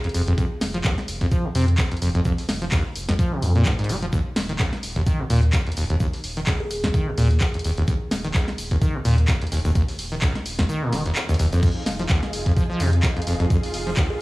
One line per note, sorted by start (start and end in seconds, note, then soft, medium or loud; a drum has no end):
0.04 0.07 F2 medium
0.04 closed hi-hat soft
0.09 closed hi-hat medium
0.14 0.34 F1 medium
0.14 0.22 F2 medium
0.14 snare medium
0.14 open hi-hat loud
0.14 shaker medium
0.27 0.33 F2 loud
0.27 closed hi-hat medium
0.38 0.45 F2 loud
0.38 kick loud
0.38 closed hi-hat medium
0.38 shaker medium
0.61 0.81 F1 loud
0.61 snare medium
0.61 open hi-hat loud
0.61 shaker medium
0.74 0.78 F3 medium
0.74 snare soft
0.74 closed hi-hat soft
0.84 0.95 D#2 medium
0.84 kick loud
0.84 snare loud
0.84 clap loud
0.84 closed hi-hat medium
0.84 shaker loud
0.98 snare soft
1.08 1.28 F1 medium
1.08 open hi-hat loud
1.08 shaker medium
1.21 1.27 F2 loud
1.21 kick medium
1.21 snare medium
1.21 closed hi-hat medium
1.31 1.46 F3 medium
1.31 kick loud
1.31 closed hi-hat medium
1.31 shaker medium
1.45 1.48 C3 medium
1.55 1.75 F2 medium
1.55 1.66 C3 loud
1.55 open hi-hat loud
1.55 shaker medium
1.68 closed hi-hat medium
1.78 kick loud
1.78 snare loud
1.78 clap loud
1.78 closed hi-hat medium
1.78 shaker medium
1.92 1.95 F2 medium
1.92 closed hi-hat soft
1.97 closed hi-hat medium
2.02 2.22 F1 medium
2.02 2.09 F2 medium
2.02 open hi-hat loud
2.02 shaker medium
2.15 2.21 F2 loud
2.15 closed hi-hat medium
2.25 2.32 F2 loud
2.25 kick loud
2.25 closed hi-hat medium
2.25 shaker loud
2.38 snare soft
2.38 open hi-hat medium
2.48 2.69 F1 loud
2.48 snare medium
2.48 open hi-hat medium
2.48 open hi-hat loud
2.62 2.65 F3 medium
2.62 snare soft
2.62 closed hi-hat medium
2.72 2.83 D#2 medium
2.72 kick loud
2.72 snare loud
2.72 clap loud
2.72 closed hi-hat medium
2.72 shaker medium
2.96 3.16 F1 medium
2.96 open hi-hat loud
2.96 shaker medium
3.09 3.14 F2 loud
3.09 kick medium
3.09 snare medium
3.19 3.34 F3 medium
3.19 kick loud
3.19 closed hi-hat medium
3.19 shaker medium
3.32 3.44 C3 medium
3.42 3.53 F2 loud
3.42 3.62 F2 medium
3.42 open hi-hat loud
3.42 shaker medium
3.56 3.64 A#2 loud
3.56 snare soft
3.56 closed hi-hat medium
3.65 3.73 G#2 loud
3.65 kick loud
3.65 snare loud
3.65 clap loud
3.65 closed hi-hat medium
3.65 shaker medium
3.79 3.91 G#2 medium
3.79 closed hi-hat soft
3.84 closed hi-hat medium
3.89 4.09 F1 medium
3.89 3.97 G#3 medium
3.89 snare medium
3.89 open hi-hat loud
3.89 shaker medium
4.02 4.06 F3 medium
4.02 closed hi-hat soft
4.13 4.20 D#2 loud
4.13 kick loud
4.13 closed hi-hat medium
4.13 shaker medium
4.36 4.56 D#1 loud
4.36 snare medium
4.36 open hi-hat loud
4.36 shaker medium
4.49 4.53 D#3 medium
4.49 snare soft
4.49 closed hi-hat soft
4.59 4.70 C#2 medium
4.59 kick loud
4.59 snare loud
4.59 clap loud
4.59 closed hi-hat medium
4.59 shaker medium
4.73 snare soft
4.83 5.03 D#1 medium
4.83 open hi-hat loud
4.83 shaker medium
4.96 5.02 D#2 loud
4.96 kick medium
4.96 snare soft
4.96 closed hi-hat medium
5.06 5.21 D#3 medium
5.06 kick loud
5.06 closed hi-hat medium
5.06 shaker medium
5.20 5.23 A#2 medium
5.30 5.50 D#2 loud
5.30 5.41 A#2 loud
5.30 open hi-hat loud
5.30 shaker medium
5.43 closed hi-hat medium
5.53 kick loud
5.53 snare loud
5.53 clap loud
5.53 closed hi-hat medium
5.53 shaker loud
5.67 5.70 D#2 medium
5.67 closed hi-hat soft
5.72 closed hi-hat medium
5.76 5.97 D#1 medium
5.76 5.84 D#2 medium
5.76 open hi-hat loud
5.76 shaker medium
5.90 5.96 D#2 loud
5.90 closed hi-hat medium
6.00 6.07 D#2 loud
6.00 kick loud
6.00 closed hi-hat medium
6.00 shaker loud
6.13 snare soft
6.13 open hi-hat medium
6.24 6.44 D#1 loud
6.24 open hi-hat medium
6.24 open hi-hat loud
6.36 6.40 D#3 medium
6.36 snare soft
6.36 closed hi-hat medium
6.47 6.58 C#2 medium
6.47 kick loud
6.47 snare loud
6.47 clap loud
6.47 closed hi-hat medium
6.47 shaker medium
6.60 6.67 G#4 medium
6.70 6.91 D#1 medium
6.70 6.79 G#4 medium
6.70 open hi-hat loud
6.70 shaker medium
6.84 6.89 D#2 loud
6.84 kick medium
6.84 snare medium
6.84 closed hi-hat medium
6.94 7.09 D#3 medium
6.94 kick loud
6.94 closed hi-hat medium
6.94 shaker medium
7.07 7.11 A#2 medium
7.17 7.37 D#2 medium
7.17 7.28 A#2 loud
7.17 open hi-hat loud
7.17 shaker medium
7.31 snare soft
7.31 closed hi-hat medium
7.40 kick loud
7.40 snare loud
7.40 clap loud
7.40 closed hi-hat medium
7.40 shaker loud
7.54 7.57 D#2 medium
7.54 closed hi-hat soft
7.59 closed hi-hat medium
7.64 7.84 D#1 medium
7.64 7.72 D#2 medium
7.64 snare medium
7.64 open hi-hat loud
7.64 shaker medium
7.77 7.83 D#2 loud
7.77 closed hi-hat medium
7.88 7.95 D#2 loud
7.88 kick loud
7.88 closed hi-hat medium
7.88 shaker medium
8.11 8.31 D#1 loud
8.11 snare medium
8.11 open hi-hat loud
8.11 shaker medium
8.24 8.28 D#3 medium
8.24 snare medium
8.24 closed hi-hat medium
8.34 8.46 C#2 medium
8.34 kick loud
8.34 snare loud
8.34 clap loud
8.34 closed hi-hat medium
8.34 shaker medium
8.48 snare soft
8.58 8.78 D#1 medium
8.58 open hi-hat loud
8.58 shaker medium
8.71 8.77 D#2 loud
8.71 kick medium
8.71 snare medium
8.71 closed hi-hat medium
8.82 8.96 D#3 medium
8.82 kick loud
8.82 closed hi-hat medium
8.82 shaker loud
8.95 8.98 A#2 medium
9.05 9.25 D#2 loud
9.05 9.16 A#2 loud
9.05 open hi-hat loud
9.05 shaker medium
9.18 closed hi-hat medium
9.28 kick loud
9.28 snare loud
9.28 clap loud
9.28 closed hi-hat medium
9.28 shaker medium
9.42 9.45 D#2 medium
9.42 closed hi-hat soft
9.47 closed hi-hat medium
9.52 9.72 D#1 medium
9.52 9.59 D#2 medium
9.52 snare loud
9.52 open hi-hat loud
9.52 shaker medium
9.65 9.71 D#2 loud
9.65 snare loud
9.65 closed hi-hat medium
9.65 shaker medium
9.75 9.83 D#2 loud
9.75 kick loud
9.75 closed hi-hat medium
9.75 shaker medium
9.88 snare soft
9.88 open hi-hat medium
9.98 10.19 D#1 loud
9.98 open hi-hat medium
9.98 open hi-hat loud
10.12 10.15 D#3 medium
10.12 snare soft
10.12 closed hi-hat medium
10.22 10.33 C#2 medium
10.22 kick loud
10.22 snare loud
10.22 clap loud
10.22 closed hi-hat medium
10.22 shaker medium
10.35 snare soft
10.46 10.66 D#1 medium
10.46 open hi-hat loud
10.46 shaker medium
10.59 10.64 D#2 loud
10.59 kick medium
10.59 snare medium
10.59 closed hi-hat medium
10.69 10.84 D#3 medium
10.69 closed hi-hat medium
10.69 shaker medium
10.82 10.94 A#2 medium
10.93 11.12 D#1 medium
10.93 11.03 D#3 medium
10.93 snare soft
10.93 open hi-hat loud
10.93 shaker medium
11.05 11.11 D#2 medium
11.05 snare soft
11.05 closed hi-hat medium
11.15 snare loud
11.15 clap loud
11.15 closed hi-hat medium
11.15 shaker medium
11.29 11.35 D#2 loud
11.29 snare loud
11.29 closed hi-hat soft
11.29 shaker medium
11.34 closed hi-hat medium
11.39 11.59 D#1 loud
11.39 11.47 D#2 loud
11.39 snare loud
11.39 open hi-hat loud
11.39 shaker medium
11.52 11.61 F2 loud
11.52 snare loud
11.52 closed hi-hat medium
11.52 shaker medium
11.63 14.21 D#4 medium
11.63 14.21 F4 medium
11.63 14.21 G#4 loud
11.63 kick loud
11.63 closed hi-hat medium
11.63 crash medium
11.63 shaker medium
11.86 12.06 F1 loud
11.86 snare medium
11.86 open hi-hat loud
11.86 shaker medium
11.99 12.03 F3 medium
11.99 snare soft
11.99 closed hi-hat medium
12.09 12.20 D#2 medium
12.09 kick loud
12.09 snare loud
12.09 clap loud
12.09 closed hi-hat medium
12.09 shaker medium
12.23 snare soft
12.33 12.53 F1 medium
12.33 open hi-hat loud
12.33 shaker medium
12.46 12.52 F2 loud
12.46 kick medium
12.46 snare medium
12.46 closed hi-hat medium
12.57 12.64 F3 medium
12.57 kick loud
12.57 closed hi-hat medium
12.57 shaker medium
12.70 12.82 F3 medium
12.80 13.00 F2 loud
12.80 12.91 C3 loud
12.80 open hi-hat loud
12.80 shaker medium
12.93 closed hi-hat medium
13.03 kick loud
13.03 snare loud
13.03 clap loud
13.03 closed hi-hat medium
13.03 shaker medium
13.17 13.20 F2 medium
13.17 closed hi-hat medium
13.22 closed hi-hat medium
13.27 13.47 F1 medium
13.27 13.34 F2 medium
13.27 open hi-hat loud
13.27 shaker medium
13.40 13.46 F2 loud
13.40 closed hi-hat medium
13.50 13.57 F2 loud
13.50 kick loud
13.50 closed hi-hat medium
13.50 shaker medium
13.63 snare soft
13.63 open hi-hat medium
13.74 13.94 F1 loud
13.74 open hi-hat medium
13.74 open hi-hat loud
13.87 13.90 F3 medium
13.87 snare soft
13.87 closed hi-hat medium
13.97 14.08 D#2 medium
13.97 kick loud
13.97 snare loud
13.97 clap loud
13.97 closed hi-hat medium
13.97 shaker medium
14.10 14.17 G#4 medium